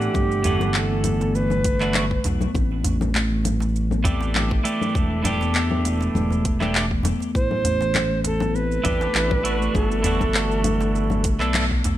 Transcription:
Already playing: clean electric guitar E3 A3 D4 F#5, native american-style wooden flute G4
0.01 shaker
0.14 analog synth bass G1, steel tongue drum A3, kick, low conga, shaker
0.30 steel tongue drum E3, shaker
0.43 clean electric guitar E3 A3 D4, closed hi-hat, djembe bass, shaker
0.47 clean electric guitar F#5
0.60 steel tongue drum A3, djembe slap, low conga, shaker
0.74 native american-style wooden flute A4, clap, shaker
0.91 steel tongue drum B3
1.04 steel tongue drum B3, closed hi-hat, djembe tone, low conga, shaker
1.21 djembe slap, shaker
1.34 steel tongue drum A3, native american-style wooden flute B4, shaker
1.50 djembe tone, low conga, shaker
1.64 steel tongue drum A3, kick, closed hi-hat, shaker
1.80 clean electric guitar E3 A3 D4 F#4, steel tongue drum E3, clap, shaker
1.94 clap, low conga, shaker
2.11 kick
2.24 analog synth bass B1, closed hi-hat, djembe slap, djembe bass, shaker
2.41 steel tongue drum B3, djembe slap, low conga, shaker
2.55 analog synth bass A1, steel tongue drum C4, kick, low conga, shaker
2.71 djembe tone
2.84 steel tongue drum A3, closed hi-hat, djembe bass, shaker
3.01 djembe slap, low conga, shaker
3.15 steel tongue drum A3, clap, shaker
3.31 steel tongue drum E3
3.44 closed hi-hat, djembe tone, low conga, shaker
3.60 steel tongue drum A3, djembe slap, shaker
3.76 shaker
3.91 steel tongue drum B3, low conga, shaker
4.04 clean electric guitar E3 A3 D4 G4, kick, closed hi-hat, djembe bass, shaker
4.21 djembe slap, djembe tone, shaker
4.34 steel tongue drum A3, clap, low conga, shaker
4.51 kick
4.64 clean electric guitar E3 A3 D4 G4, steel tongue drum A3, closed hi-hat, shaker
4.81 steel tongue drum E3, low conga, shaker
4.95 analog synth bass E1, kick, shaker
5.11 steel tongue drum A3
5.22 clean electric guitar E3 A3 D4, closed hi-hat, djembe bass, low conga, shaker
5.26 clean electric guitar G4
5.41 steel tongue drum B3, djembe slap, shaker
5.55 steel tongue drum B3, clap, shaker
5.71 low conga
5.85 steel tongue drum A3, closed hi-hat, djembe tone, shaker
6.01 djembe slap, shaker
6.15 analog synth bass E1, steel tongue drum A3, low conga, shaker
6.30 steel tongue drum E3, djembe tone, shaker
6.45 kick, closed hi-hat, shaker
6.60 clean electric guitar E3 A3 D4 G4, steel tongue drum A3, clap, low conga, shaker
6.75 clap, shaker
6.91 steel tongue drum B3, kick
7.03 steel tongue drum B3, closed hi-hat, djembe slap, djembe bass, low conga, shaker
7.20 djembe slap, shaker
7.35 analog synth bass A1, steel tongue drum A3, native american-style wooden flute C5, kick, shaker
7.51 djembe tone, low conga
7.64 steel tongue drum A3, closed hi-hat, djembe bass, shaker
7.81 steel tongue drum E3, djembe slap, shaker
7.95 clap, low conga, shaker
8.11 steel tongue drum A3
8.24 native american-style wooden flute A4, closed hi-hat, djembe tone, shaker
8.40 steel tongue drum B3, djembe slap, low conga, shaker
8.55 steel tongue drum C4, native american-style wooden flute B4, shaker
8.72 shaker
8.84 analog synth bass A1, clean electric guitar E3 A3 D4 G4, steel tongue drum A3, kick, closed hi-hat, low conga, djembe bass, shaker
9.01 djembe slap, djembe tone, shaker
9.14 analog synth bass A1, steel tongue drum A3, clap, shaker
9.31 steel tongue drum E3, kick, low conga
9.43 clean electric guitar E3 A3 D4 F#4, closed hi-hat, shaker
9.60 steel tongue drum A3, shaker
9.74 analog synth bass G1, native american-style wooden flute G#4, kick, low conga, shaker
9.87 steel tongue drum B3, native american-style wooden flute A4
9.92 shaker
10.02 clean electric guitar E3 A3 D4, steel tongue drum B3, closed hi-hat, djembe bass, shaker
10.06 clean electric guitar F#4
10.21 kick, djembe slap, djembe tone, low conga, shaker
10.34 steel tongue drum A3, clap, shaker
10.51 shaker
10.64 steel tongue drum A3, closed hi-hat, djembe tone, low conga, shaker
10.80 steel tongue drum E3, djembe slap, shaker
10.95 shaker
11.10 steel tongue drum A3, djembe tone, low conga, shaker
11.24 kick, closed hi-hat, shaker
11.39 analog synth bass B1, clean electric guitar E3 A3 D4 A4, steel tongue drum B3, clap, shaker
11.54 steel tongue drum B3, clap, low conga, shaker
11.71 kick
11.84 steel tongue drum A3, closed hi-hat, djembe slap, djembe bass, shaker

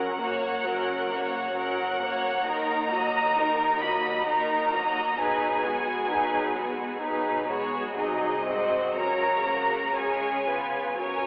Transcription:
Already playing: double bass section F#1, cello section F#2, viola section F#3 C#4, violin section A#4 F#5
0.19 viola section A#3, violin section F#4 C#5
0.65 viola section F#3 C#4, violin section A#4
1.11 viola section A#3, violin section F#4 C#5
1.54 viola section F#3 C#4, violin section A#4 F#5
2.00 viola section A#3, violin section F#4 C#5
2.45 double bass section D#2, cello section D#2, viola section D#3 D#4, violin section D#4 A#4 A#5
2.90 viola section F#3 A#3, violin section F#4 D#5
3.37 viola section D#3 D#4, violin section D#4 A#4
3.81 viola section F#3 A#3, violin section F#4 D#5 B5
4.27 viola section D#3 D#4, violin section D#4 A#4 A#5
4.72 viola section F#3 A#3, violin section F#4 D#5
5.18 double bass section B1, cello section B2, viola section F#3 D#4, violin section G#4 B4 G#5
5.65 viola section G#3 B3, violin section F#4 G#4
6.09 viola section F#3 D#4, violin section G#4 B4
6.54 viola section G#3 B3, violin section F#4 G#4
7.00 viola section F#3 D#4, violin section G#4 B4
7.47 viola section G#3 B3, violin section F#4 G#4 C#5
7.95 double bass section C2, cello section C3, viola section F#3 D#4, violin section G#4 D#5
8.47 viola section G#3 C4, violin section F#4 C5
8.96 double bass section C#2, cello section C#3, viola section F#3 C#4, violin section A#4 C#5 A#5
9.46 viola section A#3, violin section F#4 A#4
9.96 viola section G#3 C#4, violin section G#4 C#5 G#5
10.45 viola section B3, violin section F4 B4
10.97 double bass section F#1, cello section F#2, viola section F#3 C#4, violin section A#4 C#5 G#5

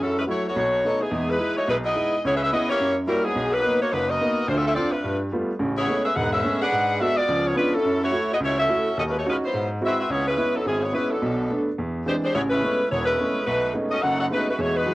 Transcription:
0.00 grand piano F#2, saxophone section F#3 C#4 E4 A4
0.19 saxophone section G#3 C#4 E4 B4
0.27 grand piano F#3 A3 E4, saxophone section A3 F#4
0.31 saxophone section E4 C#5
0.48 saxophone section B3 F#4 A4 C#5
0.56 grand piano B1
0.84 saxophone section F#3 B3 D#4 A4, grand piano A3 B3 D#4
1.01 saxophone section E3 B3 D#4 G#4
1.11 grand piano E2 G#3
1.30 saxophone section G#3 D#4 E4 B4
1.39 grand piano G#3 D#4 E4
1.56 saxophone section A3 D#4 F#4 C#5
1.68 grand piano B1, saxophone section G#3 D#4 E4 B4
1.85 saxophone section B3 E4 G#4 D#5
1.95 grand piano G#3 D#4 E4
2.25 grand piano C#2, saxophone section B3 E4 G#4 C#5
2.36 saxophone section C#4 G#4 B4 E5
2.43 saxophone section C#4 G#4 B4 E5
2.52 grand piano B3 C#4 E4, saxophone section B3 E4 G#4 D#5
2.69 saxophone section A#3 E4 G4 C#5
2.80 grand piano F#2
3.07 grand piano G3 A#3 E4 F#4, saxophone section G3 C#4 E4 A#4
3.24 saxophone section F#3 B3 D#4 G#4
3.36 grand piano B1
3.52 saxophone section F#3 A#3 D#4 B4
3.63 grand piano A#3 B3 D#4
3.80 saxophone section A#3 D#4 F#4 C#5
3.92 grand piano F#1, saxophone section F#3 A#3 D#4 B4
4.09 saxophone section B3 F#4 A#4 D#5
4.21 grand piano A#3 B3 D#4
4.48 grand piano D2 D3, saxophone section A3 D4 F4 C5
4.56 saxophone section C4 F4 A4 E5
4.66 saxophone section C4 F4 A4 E5
4.75 saxophone section C4 F4 A4 D5, grand piano C4 D4 F4
4.91 saxophone section A3 D4 F4 B4
5.04 grand piano G2
5.32 grand piano G3 A3 B3 F4
5.59 grand piano A1 C#3
5.77 saxophone section B3 E4 G#4 C#5
5.87 grand piano G#3 A3 B3 C#4
6.05 saxophone section C#4 G#4 B4 E5
6.15 grand piano E1 G#2, saxophone section D#4 G#4 B4 F#5
6.32 saxophone section C#4 G#4 B4 E5
6.44 grand piano G#3 A3 B3 C#4
6.62 saxophone section D4 G#4 B4 F#5
6.72 grand piano G#2
7.00 grand piano G#3 B3 F#4, saxophone section D4 F#4 A4 E5
7.16 saxophone section B3 F4 G#4 D5
7.28 grand piano C#2 F3
7.47 saxophone section B3 F4 G#4 C#5
7.55 saxophone section G#3 D4 F4 B4, grand piano B3 C#4 D4 F4
7.74 saxophone section F#3 C#4 E4 A4
7.85 grand piano F#2
8.03 saxophone section A3 E4 F#4 C#5
8.12 grand piano A3 E4 F#4
8.32 saxophone section B3 E4 G#4 D#5
8.40 grand piano C#2, saxophone section E4
8.44 saxophone section A3 F#4 C#5
8.59 saxophone section C#4 F#4 A4 E5
8.68 grand piano A3 E4 F#4
8.97 grand piano D#2, saxophone section C#4 F#4 A4 D#5
9.08 saxophone section G#3 C#4 F4 A#4 B4
9.18 saxophone section A3 D#4 F#4 C#5
9.26 saxophone section G#3 C#4, grand piano C#4 D#4 F#4
9.30 saxophone section F4 B4
9.45 saxophone section F#3 B3 E4 C5
9.54 grand piano G#2
9.81 grand piano G#3 C4 E4 F#4, saxophone section C4
9.85 saxophone section F#4 B4 E5
10.00 saxophone section C4 F#4 B4 E5
10.10 grand piano C#2, saxophone section B3 E4 G#4 C#5
10.28 saxophone section G#3 C#4 E4 B4
10.37 grand piano B3 C#4 E4
10.55 saxophone section F#3 B3 D#4 A4
10.66 grand piano G#1, saxophone section E3 B3 C#4 G#4
10.83 saxophone section B3 E4 G#4 C#5
10.93 saxophone section G#3 C#4 E4 B4, grand piano B3 C#4 E4
11.11 saxophone section F#3 B3 D4 A4
11.22 grand piano B1 B2
11.50 grand piano A3 B3 D4
11.78 grand piano E2
12.06 grand piano E3 G#3 C4 D4, saxophone section G#3 D4 G4 C5
12.23 saxophone section G#3 D4 G4 C5
12.34 grand piano A1 C#3, saxophone section B3 E4 G#4 C#5
12.50 saxophone section G#3 C#4 E4 B4
12.63 grand piano G#3 A3 B3 C#4
12.91 grand piano E1, saxophone section B3 E4 G#4 C#5
13.06 saxophone section G#3 C#4 E4 B4
13.19 grand piano G#3 A3 B3 C#4
13.46 grand piano B1, saxophone section A3 D#4 F#4 B4
13.74 grand piano G#3 A3 B3 C#4 D#4
13.90 saxophone section C#4 F#4 A4 D#5
14.02 grand piano F#1 F#2, saxophone section D#4 A4 C#5 F#5
14.20 saxophone section D#4 A4 C#5 F#5
14.30 grand piano G#3 A3 B3 C#4 D#4, saxophone section A3 D#4 F#4 B4
14.50 saxophone section A3 D#4 F#4 B4
14.58 grand piano E2 G#3, saxophone section A3 D#4 F#4 C#5
14.76 saxophone section G#3 D#4 F#4 B4
14.86 grand piano E3 F#3 G#3 D#4

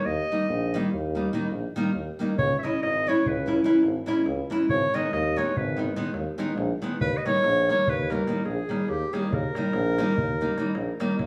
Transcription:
0.05 tuba D#2, clarinet D#5
0.32 nylon-string guitar D#3 G3 A#3 D#4
0.49 tuba A#1
0.74 nylon-string guitar D#3 G3 A#3 D#4
0.93 tuba D#2
1.15 nylon-string guitar D#3 G3 A#3 D#4
1.33 nylon-string guitar D#3 G3 A#3 D#4
1.51 tuba A#1
1.76 nylon-string guitar D#3 G3 A#3 D#4
1.94 tuba D#2
2.19 nylon-string guitar D#3 G3 A#3 D#4
2.38 tuba C#2, clarinet C#5, darbuka dum
2.52 darbuka tek
2.59 clarinet E5
2.63 nylon-string guitar E3 G#3 C#4 E4, clarinet D#5, darbuka tek
2.82 tuba G#1, clarinet D#5, darbuka tek
3.06 nylon-string guitar E3 G#3 C#4 E4, clarinet C#5
3.26 tuba C#2, clarinet B4, darbuka dum
3.46 nylon-string guitar E3 G#3 C#4 E4, darbuka tek
3.57 darbuka tek
3.64 nylon-string guitar E3 G#3 C#4 E4, darbuka tek
3.83 tuba G#1, darbuka tek
3.96 darbuka tek
4.06 nylon-string guitar E3 G#3 C#4 E4, darbuka tek
4.26 tuba C#2, darbuka tek
4.50 nylon-string guitar E3 G#3 C#4 E4, darbuka tek
4.69 tuba G#1, clarinet C#5, darbuka dum
4.82 darbuka tek
4.94 nylon-string guitar D#3 G#3 B3 D#4, clarinet D#5, darbuka tek
5.12 tuba D#2, clarinet D#5, darbuka tek
5.36 nylon-string guitar D#3 G#3 B3 D#4, clarinet C#5, darbuka tek
5.56 tuba G#1, clarinet B4, darbuka dum
5.76 nylon-string guitar D#3 G#3 B3 D#4, darbuka tek
5.88 darbuka tek
5.96 nylon-string guitar D#3 G#3 B3 D#4, darbuka tek
6.13 tuba D#2, darbuka tek
6.27 darbuka tek
6.38 nylon-string guitar D#3 G#3 B3 D#4, darbuka tek
6.56 tuba A#1, darbuka tek
6.82 nylon-string guitar D#3 G#3 B3 D#4, darbuka tek
7.00 tuba D#2, clarinet B4, darbuka dum
7.14 clarinet D#5, darbuka tek
7.26 nylon-string guitar D#3 G3 A#3 D#4, clarinet C#5, darbuka tek
7.44 tuba A#1, darbuka tek
7.69 nylon-string guitar D#3 G3 A#3 D#4, clarinet C#5, darbuka tek
7.86 tuba D#2, clarinet B4, darbuka dum
8.10 nylon-string guitar D#3 G3 A#3 D#4, clarinet A#4, darbuka tek
8.19 darbuka tek
8.27 nylon-string guitar D#3 G3 A#3 D#4, darbuka tek
8.45 tuba A#1, clarinet G#4, darbuka tek
8.59 darbuka tek
8.69 nylon-string guitar D#3 G3 A#3 D#4, darbuka tek
8.88 tuba D#2, clarinet G4, darbuka tek
9.13 nylon-string guitar D#3 G3 A#3 D#4, clarinet G#4, darbuka tek
9.31 tuba D#2, clarinet A#4, darbuka dum
9.44 darbuka tek
9.55 nylon-string guitar D#3 G3 A#3 D#4, darbuka tek
9.64 darbuka tek
9.73 tuba A#1, darbuka tek
9.86 darbuka tek
9.98 nylon-string guitar D#3 G3 A#3 D#4, darbuka tek
10.08 darbuka tek
10.18 tuba D#2, darbuka dum
10.41 nylon-string guitar D#3 G3 A#3 D#4
10.58 nylon-string guitar D#3 G3 A#3 D#4, darbuka tek
10.67 darbuka tek
10.75 tuba A#1, darbuka tek
11.00 nylon-string guitar D#3 G3 A#3 D#4, darbuka tek
11.10 darbuka tek
11.19 tuba D#2, darbuka tek, darbuka dum

